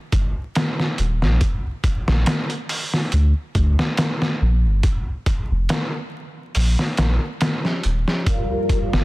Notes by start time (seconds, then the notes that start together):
0.12 G1, kick, closed hi-hat
0.55 snare, closed hi-hat
0.80 snare
0.98 D#1, closed hi-hat
1.22 A#1, snare
1.41 kick, closed hi-hat
1.84 kick, closed hi-hat
2.08 A#1, snare
2.26 snare, closed hi-hat
2.50 closed hi-hat
2.69 open hi-hat
2.94 snare
3.12 D2, closed hi-hat
3.55 D2, kick, closed hi-hat
3.79 snare
3.97 snare, closed hi-hat
4.22 snare
4.42 A#1
4.65 G1
4.83 kick, closed hi-hat
5.26 kick, closed hi-hat
5.51 F1
5.69 snare, closed hi-hat
6.55 A#1, open hi-hat
6.79 snare
6.97 A#1, snare, closed hi-hat
7.41 snare, closed hi-hat
7.65 snare
7.83 D#1, closed hi-hat
8.08 snare
8.26 G3 F4 A#4, kick, closed hi-hat
8.69 kick, closed hi-hat
8.93 G1, snare